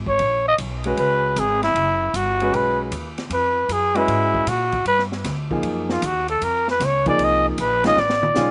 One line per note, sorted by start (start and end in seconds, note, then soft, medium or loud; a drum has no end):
0.00 0.18 G#1 medium
0.06 0.43 C#5 medium
0.06 kick medium
0.19 0.57 A#1 medium
0.19 ride medium
0.48 0.55 D#5 medium
0.58 0.96 B1 loud
0.58 hi-hat pedal medium
0.58 ride medium
0.84 1.34 G#3 medium
0.84 1.34 C#4 medium
0.84 1.34 F#4 medium
0.84 1.35 B4 medium
0.84 ride medium
0.97 1.35 C#2 medium
0.97 1.41 B4 medium
0.97 ride medium
1.36 1.74 G#1 medium
1.36 1.63 G#4 medium
1.36 hi-hat pedal medium
1.36 ride medium
1.63 2.18 E4 medium
1.63 snare soft
1.63 ride soft
1.74 2.12 F#1 medium
1.74 ride medium
2.14 2.51 G1 medium
2.14 2.57 F#4 medium
2.14 hi-hat pedal medium
2.14 ride medium
2.40 2.90 G#3 medium
2.40 2.90 C#4 medium
2.40 2.90 F#4 medium
2.40 2.90 B4 medium
2.40 ride soft
2.52 2.90 B1 medium
2.52 2.80 B4 medium
2.52 ride medium
2.91 3.29 D#2 medium
2.91 hi-hat pedal medium
2.91 ride medium
3.18 snare soft
3.18 ride soft
3.30 3.68 F2 medium
3.30 3.74 B4 medium
3.30 ride medium
3.69 4.07 F#2 medium
3.69 3.98 G#4 medium
3.69 hi-hat pedal medium
3.69 ride medium
3.95 4.44 G#3 medium
3.95 4.45 C#4 medium
3.95 4.50 E4 medium
3.95 4.45 F#4 medium
3.95 4.45 B4 medium
3.95 ride soft
4.08 4.46 G#2 medium
4.08 ride medium
4.34 kick medium
4.47 4.84 A#2 medium
4.47 4.87 F#4 medium
4.47 hi-hat pedal medium
4.47 ride medium
4.72 kick soft
4.72 ride soft
4.85 5.23 G2 medium
4.85 5.03 B4 medium
4.85 ride medium
4.99 snare soft
5.12 snare soft
5.24 5.62 D2 medium
5.24 snare soft
5.24 hi-hat pedal medium
5.24 ride medium
5.51 6.00 F3 medium
5.51 6.00 A#3 medium
5.51 6.00 D#4 medium
5.51 6.01 G#4 medium
5.51 kick medium
5.63 6.01 F#2 medium
5.63 ride medium
5.89 6.07 F4 medium
5.89 snare medium
6.02 6.40 D#2 loud
6.02 6.29 F#4 medium
6.02 hi-hat pedal medium
6.02 ride medium
6.28 6.45 A4 medium
6.28 ride soft
6.41 6.79 F2 medium
6.41 6.68 A#4 medium
6.41 ride medium
6.68 6.87 B4 medium
6.68 snare soft
6.80 7.18 C#2 medium
6.80 snare soft
6.80 hi-hat pedal medium
6.80 ride medium
6.85 7.08 C#5 medium
7.06 7.55 F3 medium
7.06 7.55 A#3 medium
7.06 7.56 D#4 medium
7.06 7.56 G#4 medium
7.06 7.26 D5 medium
7.06 kick medium
7.06 ride soft
7.19 7.57 C2 medium
7.19 ride medium
7.24 7.47 D#5 medium
7.49 7.62 G#4 soft
7.58 7.95 A#1 medium
7.58 7.85 B4 medium
7.58 hi-hat pedal medium
7.58 ride medium
7.84 7.95 D#3 medium
7.84 7.96 G#3 medium
7.84 7.96 C#4 medium
7.84 7.96 F4 medium
7.84 8.01 D#5 loud
7.84 snare medium
7.84 ride soft
7.96 8.34 A1 medium
7.96 8.51 D5 medium
7.96 snare soft
8.10 snare medium
8.23 mid tom medium
8.34 8.51 B1 medium
8.34 8.51 D#3 medium
8.34 8.51 G#3 medium
8.34 8.51 C#4 medium
8.34 8.51 F4 medium
8.34 snare medium
8.34 hi-hat pedal medium